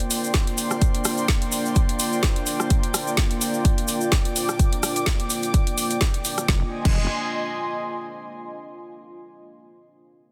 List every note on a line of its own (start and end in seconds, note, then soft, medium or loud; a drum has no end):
0.00 6.44 A#3 medium
0.00 6.48 A#3 medium
0.00 6.44 D4 medium
0.00 6.44 F4 medium
0.00 6.44 C5 medium
0.00 6.48 D5 medium
0.00 6.48 G5 medium
0.00 3.95 C6 medium
0.00 closed hi-hat medium
0.11 open hi-hat loud
0.11 cabasa medium
0.24 cabasa medium
0.34 kick loud
0.34 snare loud
0.34 closed hi-hat medium
0.34 cabasa soft
0.47 closed hi-hat soft
0.58 open hi-hat medium
0.58 cabasa loud
0.71 cross-stick medium
0.71 cabasa medium
0.81 kick loud
0.81 closed hi-hat medium
0.81 cabasa soft
0.95 closed hi-hat medium
1.05 cross-stick medium
1.05 open hi-hat loud
1.05 cabasa medium
1.17 cabasa medium
1.28 kick loud
1.28 snare loud
1.28 closed hi-hat medium
1.28 cabasa soft
1.42 closed hi-hat medium
1.52 open hi-hat medium
1.52 cabasa medium
1.66 cabasa medium
1.75 kick loud
1.75 closed hi-hat medium
1.75 cabasa soft
1.89 closed hi-hat medium
1.99 open hi-hat loud
1.99 cabasa medium
2.12 cabasa soft
2.23 kick loud
2.23 snare loud
2.23 closed hi-hat medium
2.23 cabasa soft
2.36 closed hi-hat medium
2.46 open hi-hat medium
2.46 cabasa medium
2.60 cross-stick medium
2.60 cabasa soft
2.70 kick loud
2.70 closed hi-hat medium
2.70 cabasa soft
2.83 closed hi-hat medium
2.94 cross-stick medium
2.94 open hi-hat loud
2.94 cabasa medium
3.07 cabasa soft
3.17 kick loud
3.17 snare loud
3.17 closed hi-hat medium
3.17 cabasa soft
3.31 closed hi-hat medium
3.41 open hi-hat medium
3.41 cabasa loud
3.54 cabasa soft
3.65 kick loud
3.65 closed hi-hat medium
3.65 cabasa soft
3.78 6.49 D6 medium
3.78 closed hi-hat medium
3.88 open hi-hat loud
3.88 cabasa medium
4.01 cabasa soft
4.12 kick loud
4.12 snare loud
4.12 closed hi-hat medium
4.12 cabasa soft
4.25 closed hi-hat medium
4.36 open hi-hat medium
4.36 cabasa medium
4.49 cross-stick medium
4.49 cabasa soft
4.59 kick loud
4.59 closed hi-hat medium
4.59 cabasa soft
4.73 closed hi-hat medium
4.83 cross-stick medium
4.83 open hi-hat loud
4.83 cabasa medium
4.96 closed hi-hat soft
4.96 cabasa medium
5.06 kick loud
5.06 snare loud
5.06 closed hi-hat medium
5.06 cabasa soft
5.20 closed hi-hat medium
5.30 open hi-hat medium
5.30 cabasa medium
5.43 closed hi-hat soft
5.43 cabasa medium
5.54 kick loud
5.54 closed hi-hat medium
5.54 cabasa soft
5.67 closed hi-hat medium
5.78 open hi-hat loud
5.78 cabasa medium
5.90 closed hi-hat soft
5.90 cabasa soft
6.01 kick loud
6.01 snare loud
6.01 closed hi-hat medium
6.01 cabasa soft
6.14 closed hi-hat medium
6.25 open hi-hat medium
6.25 cabasa medium
6.38 cross-stick medium
6.38 closed hi-hat soft
6.38 cabasa medium
6.48 6.63 F1 loud
6.48 8.33 D#5 medium
6.48 kick loud
6.48 snare medium
6.56 8.33 G#5 medium
6.64 8.33 C6 medium
6.85 7.07 F1 loud
6.85 kick loud
6.85 crash medium